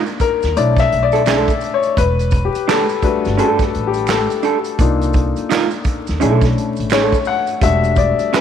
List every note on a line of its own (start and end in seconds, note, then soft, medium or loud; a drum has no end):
0.00 0.16 A#3 medium
0.00 0.16 D4 soft
0.00 0.17 D#4 soft
0.00 0.17 F4 medium
0.06 closed hi-hat soft
0.06 maracas soft
0.20 0.57 A#4 medium
0.20 muted upright bass stroke soft
0.20 kick medium
0.20 closed hi-hat medium
0.20 maracas soft
0.43 0.55 D#2 medium
0.43 snare soft
0.43 closed hi-hat soft
0.43 maracas soft
0.56 0.87 B1 loud
0.56 1.58 A3 medium
0.56 1.58 D4 soft
0.56 1.58 E4 medium
0.56 1.58 C#5 soft
0.56 0.80 D5 medium
0.56 closed hi-hat medium
0.56 maracas medium
0.77 1.04 E5 loud
0.77 kick loud
0.77 snare soft
0.77 closed hi-hat soft
0.77 maracas soft
0.92 1.42 B1 medium
0.92 closed hi-hat medium
1.03 1.75 D5 medium
1.12 1.22 D4 soft
1.12 1.21 E4 medium
1.12 1.21 A4 medium
1.12 closed hi-hat soft
1.12 maracas soft
1.26 1.50 D4 medium
1.26 1.50 E4 medium
1.26 1.50 A4 medium
1.26 finger snap medium
1.26 snare loud
1.26 clap medium
1.26 maracas medium
1.48 kick medium
1.48 closed hi-hat soft
1.48 maracas soft
1.61 closed hi-hat medium
1.61 maracas soft
1.74 1.79 C#5 medium
1.83 closed hi-hat soft
1.83 maracas soft
1.97 2.48 E1 loud
1.97 2.46 B4 medium
1.97 kick loud
1.97 closed hi-hat loud
1.97 maracas medium
2.19 closed hi-hat soft
2.19 maracas soft
2.31 kick medium
2.31 closed hi-hat medium
2.31 maracas soft
2.45 2.69 G4 medium
2.55 muted upright bass stroke soft
2.55 closed hi-hat soft
2.55 maracas soft
2.68 2.84 D4 medium
2.68 2.84 G4 medium
2.68 3.04 A4 medium
2.68 2.84 A4 medium
2.68 finger snap medium
2.68 snare loud
2.68 clap medium
2.68 maracas medium
2.89 closed hi-hat soft
2.89 maracas soft
3.02 4.05 G3 medium
3.02 4.05 A3 soft
3.02 4.05 D4 soft
3.02 4.05 F#4 medium
3.02 3.40 B4 medium
3.02 muted upright bass stroke soft
3.02 kick medium
3.02 closed hi-hat medium
3.02 maracas soft
3.25 3.38 G1 medium
3.25 snare soft
3.25 closed hi-hat soft
3.25 maracas soft
3.37 3.61 D4 medium
3.37 3.62 G4 medium
3.37 3.87 A4 medium
3.37 3.62 A4 medium
3.37 closed hi-hat medium
3.37 maracas medium
3.59 kick medium
3.59 snare soft
3.59 closed hi-hat soft
3.59 maracas soft
3.74 4.24 A1 medium
3.74 closed hi-hat medium
3.87 4.10 G4 medium
3.94 closed hi-hat soft
3.94 maracas soft
4.07 5.11 A4 medium
4.07 finger snap medium
4.07 snare loud
4.07 clap medium
4.07 maracas medium
4.30 closed hi-hat soft
4.30 maracas soft
4.43 4.56 D4 medium
4.43 4.57 G4 medium
4.43 4.57 A4 medium
4.43 closed hi-hat medium
4.43 maracas soft
4.65 closed hi-hat soft
4.65 maracas soft
4.79 5.30 C2 loud
4.79 5.81 A#3 soft
4.79 5.81 D4 medium
4.79 5.81 D#4 soft
4.79 5.82 F4 medium
4.79 kick loud
4.79 closed hi-hat loud
4.79 maracas medium
5.01 closed hi-hat soft
5.01 maracas soft
5.13 kick medium
5.13 closed hi-hat medium
5.13 maracas soft
5.36 muted upright bass stroke soft
5.36 closed hi-hat soft
5.36 maracas soft
5.49 5.66 D#4 medium
5.49 5.66 F4 medium
5.49 5.67 A#4 medium
5.49 finger snap medium
5.49 snare loud
5.49 clap medium
5.49 maracas medium
5.71 closed hi-hat soft
5.71 maracas soft
5.84 muted upright bass stroke soft
5.84 kick medium
5.84 closed hi-hat medium
5.84 maracas soft
6.07 6.24 D#2 medium
6.07 snare soft
6.07 closed hi-hat soft
6.07 maracas soft
6.20 6.53 B1 loud
6.20 7.22 A3 medium
6.20 7.22 C#4 soft
6.20 6.44 D4 medium
6.20 7.23 D4 soft
6.20 6.44 E4 medium
6.20 7.23 E4 medium
6.20 6.44 A4 medium
6.20 closed hi-hat medium
6.20 maracas medium
6.41 kick medium
6.41 snare soft
6.41 closed hi-hat soft
6.41 maracas soft
6.58 closed hi-hat medium
6.77 7.09 A1 medium
6.77 closed hi-hat soft
6.77 maracas soft
6.90 7.15 D4 medium
6.90 7.15 E4 medium
6.90 7.28 C#5 medium
6.90 finger snap medium
6.90 snare loud
6.90 clap medium
6.90 maracas medium
6.94 7.16 A4 medium
7.12 kick medium
7.12 closed hi-hat soft
7.12 maracas soft
7.25 7.63 F#5 medium
7.25 open hi-hat soft
7.25 maracas soft
7.47 closed hi-hat soft
7.47 maracas soft
7.61 8.12 E1 loud
7.61 8.11 G3 medium
7.61 8.12 A3 soft
7.61 8.12 D4 soft
7.61 8.12 F#4 medium
7.61 7.98 E5 medium
7.61 kick loud
7.61 closed hi-hat loud
7.61 maracas medium
7.84 closed hi-hat soft
7.84 maracas soft
7.96 8.34 D5 medium
7.96 kick medium
7.96 closed hi-hat medium
7.96 maracas soft
8.19 muted upright bass stroke soft
8.19 closed hi-hat soft
8.19 maracas soft
8.33 8.41 D4 medium
8.33 8.41 G4 medium
8.33 8.41 A4 medium
8.33 8.41 B4 medium
8.33 finger snap medium
8.33 snare loud
8.33 clap medium
8.33 maracas medium